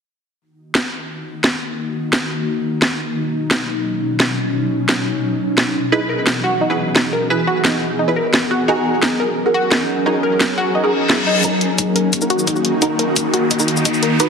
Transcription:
0.41 3.14 D#3 medium
0.41 3.14 A#3 medium
0.41 5.88 D#4 medium
0.41 3.14 F#4 medium
0.75 snare loud
1.44 snare loud
2.13 snare loud
2.82 snare loud
3.16 5.89 B2 medium
3.16 5.89 F#3 medium
3.16 5.89 C#4 medium
3.51 snare loud
4.20 snare loud
4.89 snare loud
5.58 snare loud
5.92 8.65 E3 medium
5.92 8.65 B3 medium
5.92 6.00 D#4 medium
5.92 5.99 E4 loud
5.92 8.65 F#4 medium
5.92 5.99 G#4 medium
5.92 11.40 G#4 medium
5.92 5.99 B4 loud
6.09 6.17 A#4 medium
6.27 snare loud
6.44 6.56 F#4 loud
6.61 6.69 D#4 medium
6.70 6.77 E4 medium
6.70 6.77 G#4 medium
6.70 6.77 B4 medium
6.96 7.03 D#4 medium
6.96 snare loud
7.13 7.21 A#4 medium
7.30 7.37 E4 loud
7.30 7.37 G#4 medium
7.30 7.37 B4 loud
7.47 7.59 F#4 loud
7.65 7.72 D#4 medium
7.65 snare loud
7.99 8.07 D#4 medium
8.08 8.15 E4 medium
8.08 8.15 G#4 medium
8.08 8.15 B4 medium
8.16 8.24 A#4 medium
8.34 snare loud
8.51 8.62 F#4 loud
8.68 11.41 F#3 medium
8.68 11.41 C#4 medium
8.68 8.76 D#4 medium
8.68 8.75 F#4 loud
8.68 8.75 G#4 medium
8.68 11.41 A#4 medium
8.68 8.75 A#4 loud
9.03 9.10 D#4 medium
9.03 snare loud
9.20 9.28 A#4 medium
9.46 9.53 F#4 medium
9.46 9.53 G#4 medium
9.46 9.53 A#4 medium
9.54 9.66 F#4 loud
9.71 9.79 D#4 medium
9.71 snare loud
10.06 10.14 D#4 medium
10.06 10.13 F#4 medium
10.06 10.13 G#4 medium
10.06 10.13 A#4 loud
10.23 10.31 A#4 medium
10.40 snare loud
10.58 10.69 F#4 loud
10.75 10.83 D#4 medium
10.75 reverse cymbal medium
10.84 10.91 F#4 medium
10.84 10.91 G#4 medium
10.84 10.91 A#4 medium
11.09 11.17 E4 medium
11.09 snare loud
11.27 11.34 D#4 loud
11.44 14.17 D#3 medium
11.44 14.17 A#3 medium
11.44 11.52 D#4 medium
11.44 11.51 D#4 loud
11.44 14.29 D#4 medium
11.44 14.17 F#4 medium
11.44 11.51 F#4 medium
11.44 11.51 A#4 loud
11.44 kick loud
11.44 closed hi-hat medium
11.44 riser medium
11.44 shaker soft
11.61 closed hi-hat medium
11.78 11.86 D#4 medium
11.78 kick loud
11.78 closed hi-hat loud
11.78 shaker medium
11.96 12.03 A#4 medium
11.96 closed hi-hat medium
12.13 kick loud
12.13 closed hi-hat medium
12.13 shaker soft
12.22 12.28 D#4 medium
12.22 12.28 F#4 medium
12.22 12.28 A#4 medium
12.22 shaker medium
12.30 12.42 F#4 loud
12.30 closed hi-hat medium
12.39 shaker medium
12.47 12.55 D#4 medium
12.47 kick medium
12.47 closed hi-hat medium
12.47 shaker soft
12.56 shaker soft
12.65 closed hi-hat medium
12.82 12.89 D#4 medium
12.82 12.90 D#4 medium
12.82 12.89 F#4 medium
12.82 12.89 A#4 loud
12.82 kick loud
12.82 closed hi-hat medium
12.82 shaker soft
12.99 13.07 A#4 medium
12.99 closed hi-hat medium
13.16 kick medium
13.16 closed hi-hat medium
13.16 shaker soft
13.34 13.45 F#4 loud
13.34 closed hi-hat medium
13.51 13.59 D#4 medium
13.51 kick medium
13.51 closed hi-hat medium
13.51 shaker soft
13.59 13.66 D#4 medium
13.59 13.66 F#4 medium
13.59 13.66 A#4 medium
13.59 shaker medium
13.68 closed hi-hat medium
13.77 shaker medium
13.85 13.93 D#4 medium
13.85 kick medium
13.85 closed hi-hat medium
13.85 shaker soft
13.94 shaker soft
14.03 14.10 A#4 medium
14.03 closed hi-hat medium
14.20 14.29 B2 medium
14.20 14.29 F#3 medium
14.20 14.29 C#4 medium
14.20 14.27 D#4 loud
14.20 14.27 F#4 medium
14.20 14.27 B4 loud
14.20 kick loud
14.20 closed hi-hat medium
14.20 shaker soft

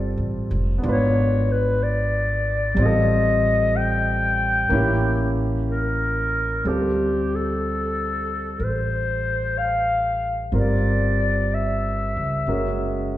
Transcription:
0.00 0.14 G1 medium
0.00 0.83 G3 medium
0.00 0.84 C4 medium
0.00 0.84 F4 medium
0.00 0.84 A4 medium
0.00 0.18 D5 medium
0.18 0.49 A1 medium
0.51 0.81 F1 medium
0.78 2.75 B3 medium
0.78 2.77 D4 soft
0.83 2.73 G#1 medium
0.83 2.78 F4 soft
0.89 2.80 B4 medium
0.89 1.53 C#5 medium
1.52 1.85 B4 medium
1.83 2.84 D5 medium
2.75 4.67 A1 medium
2.75 4.70 G3 medium
2.75 4.72 C4 medium
2.81 4.73 F4 soft
2.81 3.78 D#5 medium
2.86 4.75 A4 medium
3.76 5.39 G5 medium
4.69 6.61 A1 medium
4.69 6.64 A#3 medium
4.69 6.65 C#4 medium
4.69 6.66 E4 medium
4.74 6.67 G4 medium
5.70 6.69 A#4 medium
6.64 8.55 D2 medium
6.64 10.50 G3 soft
6.64 10.51 C4 soft
6.64 10.52 F4 soft
6.64 7.37 G4 medium
6.69 10.55 A4 medium
7.36 8.61 A4 medium
8.60 10.49 A1 medium
8.60 8.65 A#4 soft
8.64 9.60 C5 medium
9.58 10.37 F5 medium
10.52 12.12 G1 medium
10.52 12.47 G3 soft
10.52 12.47 C4 soft
10.52 12.47 F4 soft
10.52 12.47 A#4 soft
10.57 11.55 D5 medium
11.54 13.16 E5 medium
12.17 12.45 C#2 medium
12.47 13.18 F#1 medium
12.47 13.18 G#3 soft
12.47 13.18 C#4 soft
12.47 13.18 F#4 soft
12.47 13.18 A#4 soft

